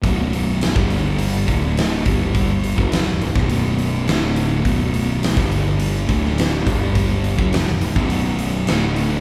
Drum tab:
HH |o-o-o-o-o-o-o-o-|o-o-o-o-o-o-o-o-|o-o-o-o-o-o-o-o-|o-o-o-o-o-o-o-o-|
SD |----o-------o---|----o--o----o---|----o------oo---|----o--o----o---|
BD |o----o----o---o-|o--o---o--------|o----o----o---o-|o--o---o--------|